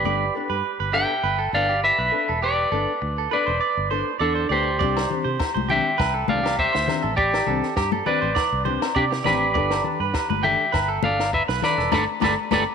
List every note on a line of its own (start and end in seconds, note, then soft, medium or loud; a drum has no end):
0.00 0.29 G1 medium
0.00 0.89 G4 medium
0.00 0.93 B4 medium
0.05 0.23 G3 medium
0.05 0.24 B3 medium
0.05 0.24 D4 medium
0.05 0.24 A4 medium
0.05 0.33 D5 medium
0.35 0.55 B3 soft
0.35 0.54 D4 medium
0.35 0.53 A4 soft
0.50 0.61 G2 medium
0.50 0.78 B4 medium
0.80 1.04 G1 medium
0.80 0.93 B4 medium
0.93 1.14 B3 soft
0.93 1.13 D4 soft
0.93 1.22 G4 medium
0.93 1.12 A4 medium
0.93 1.49 E5 medium
0.93 1.54 G5 medium
1.23 1.48 G1 medium
1.23 1.39 B4 medium
1.39 1.67 A4 medium
1.53 1.91 G1 medium
1.53 1.73 B3 soft
1.53 1.72 D4 soft
1.53 1.82 D5 medium
1.53 1.82 F5 medium
1.53 muted nylon-string guitar stroke soft
1.69 1.97 G4 medium
1.84 2.39 B4 medium
1.84 2.45 E5 medium
1.98 2.10 B1 medium
1.98 2.27 B4 medium
2.12 2.32 B3 soft
2.12 2.32 D4 soft
2.12 2.31 A4 soft
2.29 2.65 E1 medium
2.29 2.42 A4 medium
2.42 2.71 G4 medium
2.42 3.28 B4 medium
2.42 3.28 D5 loud
2.72 2.85 G1 medium
2.72 2.92 B3 soft
2.72 2.91 D4 soft
2.72 3.00 A4 medium
2.72 2.91 A4 medium
3.02 3.26 D2 medium
3.02 muted clean electric guitar stroke medium
3.18 3.31 A4 medium
3.31 3.51 B3 soft
3.31 3.51 D4 soft
3.31 3.50 A4 soft
3.31 3.46 B4 medium
3.31 4.18 B4 medium
3.31 4.24 D5 medium
3.47 3.59 E1 medium
3.47 3.60 C5 medium
3.61 3.89 D5 medium
3.77 4.02 G1 medium
3.91 4.11 B3 soft
3.91 4.10 D4 soft
3.91 4.10 A4 medium
3.91 4.19 C5 medium
4.19 4.47 E2 medium
4.19 4.49 D4 medium
4.19 4.51 A4 medium
4.19 4.35 D5 medium
4.35 4.49 C5 medium
4.49 4.82 D2 medium
4.49 4.70 B3 soft
4.49 4.70 D4 soft
4.49 5.66 G4 medium
4.49 4.69 A4 soft
4.49 5.71 C5 medium
4.49 4.78 D5 medium
4.79 5.05 C2 loud
4.79 4.99 G3 medium
4.79 4.99 C4 medium
4.79 5.00 D4 medium
4.79 5.00 G4 medium
4.79 5.08 D5 medium
4.79 kick medium
4.97 snare medium
4.97 low agogo medium
5.10 5.30 C4 soft
5.10 5.29 D4 soft
5.10 5.29 G4 soft
5.10 low conga medium
5.24 5.37 C3 medium
5.24 5.53 C5 medium
5.40 kick medium
5.40 snare medium
5.40 low agogo medium
5.54 5.80 C2 medium
5.54 5.68 C5 medium
5.54 high conga medium
5.68 5.89 C4 soft
5.68 5.89 D4 soft
5.68 5.97 G4 medium
5.68 5.88 G4 soft
5.68 6.26 E5 medium
5.68 6.25 G5 medium
5.68 low conga medium
5.98 6.24 C2 medium
5.98 6.14 B4 medium
5.98 kick medium
5.98 snare medium
5.98 low agogo medium
6.14 6.43 A4 medium
6.28 6.67 C2 medium
6.28 6.48 D4 soft
6.28 6.47 G4 medium
6.28 6.57 D5 medium
6.28 6.59 F5 medium
6.28 high conga medium
6.28 low conga medium
6.32 6.49 C4 soft
6.43 6.72 G4 medium
6.43 snare medium
6.43 low agogo medium
6.59 7.14 C5 medium
6.59 7.14 E5 medium
6.59 kick medium
6.73 6.86 D2 medium
6.73 7.02 C5 medium
6.73 snare medium
6.88 7.08 C4 soft
6.88 7.07 D4 soft
6.88 7.07 G4 soft
6.88 snare medium
6.88 low conga medium
6.88 low agogo medium
7.03 7.40 A1 medium
7.03 7.16 A4 medium
7.16 7.45 G4 medium
7.16 8.03 G4 medium
7.16 8.05 D5 medium
7.16 kick medium
7.34 snare medium
7.34 low agogo medium
7.46 7.61 C2 medium
7.46 7.67 C4 soft
7.46 7.66 D4 soft
7.46 7.66 G4 medium
7.46 7.76 A4 medium
7.46 low conga medium
7.63 snare soft
7.76 8.01 G2 medium
7.76 7.92 G4 medium
7.76 kick medium
7.76 snare medium
7.76 low agogo medium
7.92 8.06 A4 medium
7.92 high conga medium
8.06 8.26 C4 soft
8.06 8.26 D4 soft
8.06 8.25 G4 medium
8.06 8.21 B4 medium
8.06 8.92 B4 medium
8.06 8.99 D5 medium
8.06 low conga medium
8.22 8.34 A1 medium
8.22 8.35 C5 medium
8.35 8.64 D5 medium
8.35 kick medium
8.35 snare medium
8.35 low agogo medium
8.52 8.77 C2 medium
8.65 8.86 C4 soft
8.65 8.85 D4 soft
8.65 8.84 G4 medium
8.65 8.94 C5 medium
8.65 low conga medium
8.82 snare medium
8.82 low agogo medium
8.95 9.20 C3 medium
8.95 9.04 D4 medium
8.95 9.04 G4 medium
8.95 9.11 D5 medium
8.95 kick medium
9.11 9.24 G4 medium
9.11 snare medium
9.24 9.57 A1 medium
9.24 9.45 C4 soft
9.24 9.44 D4 soft
9.24 9.43 G4 soft
9.24 10.41 G4 medium
9.24 10.41 B4 medium
9.24 9.53 D5 medium
9.24 snare medium
9.24 low conga medium
9.24 low agogo medium
9.54 9.80 G1 medium
9.54 9.74 B3 medium
9.54 9.74 D4 medium
9.54 9.75 A4 medium
9.54 9.83 D5 medium
9.54 kick medium
9.71 snare medium
9.71 low agogo medium
9.84 10.05 D4 soft
9.84 10.03 A4 soft
9.84 low conga medium
10.00 10.12 G2 medium
10.00 10.29 B4 medium
10.14 kick medium
10.14 snare medium
10.14 low agogo medium
10.30 10.55 G1 medium
10.30 10.43 B4 medium
10.30 high conga medium
10.43 10.72 G4 medium
10.43 10.63 A4 soft
10.43 11.00 E5 medium
10.43 11.03 G5 medium
10.43 low conga medium
10.47 10.64 D4 soft
10.72 10.99 G1 medium
10.72 10.88 B4 medium
10.72 kick medium
10.72 snare medium
10.72 low agogo medium
10.88 11.18 A4 medium
11.03 11.41 G1 medium
11.03 11.24 D4 soft
11.03 11.22 A4 soft
11.03 11.32 D5 medium
11.03 11.32 F5 medium
11.03 high conga medium
11.03 low conga medium
11.19 muted clean electric guitar stroke medium
11.19 snare medium
11.19 low agogo medium
11.33 11.42 B4 medium
11.33 11.42 E5 medium
11.33 kick medium
11.48 11.61 B1 medium
11.48 11.77 B4 medium
11.48 snare medium
11.62 11.83 D4 soft
11.62 11.81 A4 soft
11.62 11.92 B4 medium
11.62 11.91 D5 medium
11.62 snare medium
11.62 low conga medium
11.62 low agogo medium
11.78 11.90 E1 medium
11.78 11.91 A4 medium
11.78 snare soft
11.92 12.05 G1 medium
11.92 12.03 B3 medium
11.92 12.03 D4 medium
11.92 12.03 G4 medium
11.92 12.03 A4 medium
11.92 12.04 A4 medium
11.92 12.03 B4 medium
11.92 12.04 B4 medium
11.92 12.03 D5 medium
11.92 12.04 D5 medium
11.92 kick medium
11.92 snare medium
11.92 high conga medium
11.92 low agogo medium
12.20 12.35 G1 medium
12.20 12.31 B3 medium
12.20 12.32 D4 medium
12.20 12.32 G4 medium
12.20 12.32 A4 medium
12.20 12.34 A4 medium
12.20 12.32 B4 medium
12.20 12.34 B4 medium
12.20 12.32 D5 medium
12.20 kick medium
12.20 snare medium
12.20 high conga medium
12.20 low agogo medium
12.25 12.34 D5 medium
12.51 12.64 G1 medium
12.51 12.63 B3 medium
12.51 12.62 D4 medium
12.51 12.63 G4 loud
12.51 12.62 A4 medium
12.51 12.63 A4 loud
12.51 12.62 B4 medium
12.51 12.63 B4 loud
12.51 12.62 D5 medium
12.51 12.63 D5 loud
12.51 kick medium
12.51 snare medium
12.51 high conga medium
12.51 low agogo medium